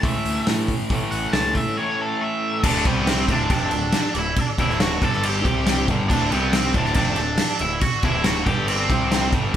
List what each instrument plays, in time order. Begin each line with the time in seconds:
0.03 picked electric bass C#2, overdriven electric guitar A2 E3 A3, lead electric guitar E5, kick, open hi-hat
0.25 picked electric bass D2, open hi-hat
0.47 picked electric bass A2, snare, open hi-hat
0.68 kick, open hi-hat
0.90 picked electric bass A1, overdriven electric guitar A2 E3 A3, kick, open hi-hat
1.11 picked electric bass A1, lead electric guitar F#5, open hi-hat
1.33 picked electric bass C#2, lead electric guitar A5, snare, open hi-hat
1.54 lead electric guitar E5, kick, open hi-hat
1.77 overdriven electric guitar A2 E3 A3, lead electric guitar C#5
2.01 lead electric guitar A4
2.21 lead electric guitar E5
2.63 picked electric bass D1, overdriven electric guitar D2 A2 D3, lead electric guitar D4 D5, kick, crash
2.85 picked electric bass C2, overdriven electric guitar C3 G3 C4, lead electric guitar B3 B4, kick, crash
3.07 lead electric guitar C4 C5, snare, crash
3.28 picked electric bass D1, overdriven electric guitar D2 A2 D3, kick, crash
3.32 lead electric guitar D4 D5
3.50 picked electric bass F1, overdriven electric guitar F2 C3 F3, lead electric guitar D4 D5, kick, crash
3.71 picked electric bass D1, overdriven electric guitar D2 A2, crash
3.92 snare, crash
4.15 picked electric bass D1, overdriven electric guitar D2 A2, lead electric guitar E4, crash
4.19 lead electric guitar E5
4.36 muted picked electric bass stroke, muted overdriven electric guitar stroke, kick, crash
4.40 lead electric guitar D4 D5
4.58 picked electric bass D1, overdriven electric guitar D2 A2 D3, lead electric guitar E4 E5, kick, crash
4.70 snare
4.80 lead electric guitar F#4 F#5, snare, crash
5.02 picked electric bass G1, overdriven electric guitar G2 D3 G3, lead electric guitar A4 A5, kick, crash
5.13 snare
5.23 lead electric guitar G4 G5, crash
5.44 picked electric bass C2, overdriven electric guitar C3 G3 C4, kick, crash
5.67 snare, crash
5.88 picked electric bass G1, overdriven electric guitar G2 D3 G3, kick, crash
6.09 picked electric bass D1, overdriven electric guitar D2 A2 D3, lead electric guitar D4 D5, kick, crash
6.30 picked electric bass C2, overdriven electric guitar C3 G3 C4, lead electric guitar B3 B4, crash
6.53 lead electric guitar C4 C5, snare, crash
6.74 picked electric bass D1, overdriven electric guitar D2 A2 D3, lead electric guitar D4 D5, kick, crash
6.85 snare
6.94 picked electric bass F1, overdriven electric guitar F2 C3 F3, lead electric guitar D4 D5, kick, crash
7.16 picked electric bass D1, overdriven electric guitar D2 A2, crash
7.38 snare, crash
7.59 picked electric bass D1, overdriven electric guitar D2 A2, lead electric guitar E4 E5, crash
7.81 lead electric guitar F#4 F#5, muted picked electric bass stroke, muted overdriven electric guitar stroke, kick, crash
8.03 picked electric bass D1, overdriven electric guitar D2 A2 D3, lead electric guitar E4 E5, kick, crash
8.24 lead electric guitar F#4 F#5, snare, crash
8.46 picked electric bass G1, overdriven electric guitar G2 D3 G3, lead electric guitar G4 G5, kick, crash
8.68 lead electric guitar C4 C5, crash
8.90 picked electric bass C2, overdriven electric guitar C3 G3 C4, kick, crash
9.12 snare, crash
9.32 picked electric bass G1, overdriven electric guitar G2 D3 G3, kick, crash